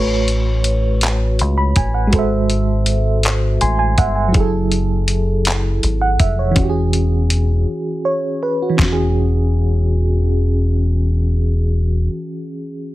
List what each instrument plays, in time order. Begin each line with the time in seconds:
Already playing: fingered electric bass A1, fm electric piano A3 F#4 B4 C#5
0.28 closed hi-hat
0.64 closed hi-hat
1.01 clap, closed hi-hat
1.39 fingered electric bass C#2, closed hi-hat
1.58 fm electric piano B5
1.76 fingered electric bass A1, fm electric piano G#5, kick, closed hi-hat
1.94 fm electric piano F#5
2.07 fm electric piano G#3 F#4
2.13 fingered electric bass G#1, fm electric piano A4 C5, kick, closed hi-hat
2.19 fm electric piano E5
2.50 closed hi-hat
2.86 closed hi-hat
3.23 clap, closed hi-hat
3.61 fingered electric bass A1, fm electric piano G#5 C6, closed hi-hat
3.79 fm electric piano G#5
3.98 fingered electric bass G1, fm electric piano E5 F#5, kick, closed hi-hat
4.15 fm electric piano G#5
4.28 fm electric piano F#3 E4
4.34 fingered electric bass F#1, fm electric piano G#4, kick, closed hi-hat
4.40 fm electric piano A4
4.72 closed hi-hat
5.08 closed hi-hat
5.45 clap, closed hi-hat
5.83 fingered electric bass G#1, closed hi-hat
6.01 fm electric piano F#5
6.20 fingered electric bass F1, fm electric piano E5, kick, closed hi-hat
6.39 fm electric piano C#5
6.51 fm electric piano E3 C#4
6.56 fingered electric bass E1, fm electric piano F#4, kick, closed hi-hat
6.63 fm electric piano G4
6.69 fm electric piano G#4
6.93 closed hi-hat
7.30 closed hi-hat
8.05 fm electric piano C#5
8.43 fm electric piano B4
8.62 fm electric piano F#4
8.70 fm electric piano E3
8.77 fingered electric bass E1, fm electric piano C#4, kick, clap
8.82 fm electric piano F#4, snare
8.92 fm electric piano G#4